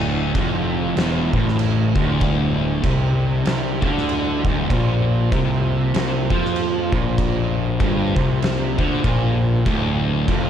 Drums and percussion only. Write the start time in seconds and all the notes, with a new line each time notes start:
0.35 kick, crash
0.97 snare, crash
1.33 kick
1.48 snare
1.59 crash
1.96 kick
2.21 kick, crash
2.84 kick, crash
3.46 snare, crash
3.82 kick
3.98 snare
4.09 crash
4.45 kick
4.70 kick, crash
5.32 kick, crash
5.94 snare, crash
6.30 kick
6.45 snare
6.56 crash
6.92 kick
7.18 kick, crash
7.80 kick, crash
8.16 kick
8.42 snare, crash
8.79 kick
9.04 kick, crash
9.66 kick, crash
10.28 kick, crash